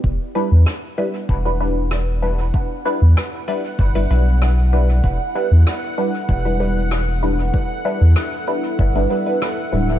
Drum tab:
SD |--r---r-|--r---r-|--r---r-|--r---r-|
BD |o---o---|o---o---|o---o---|o---o---|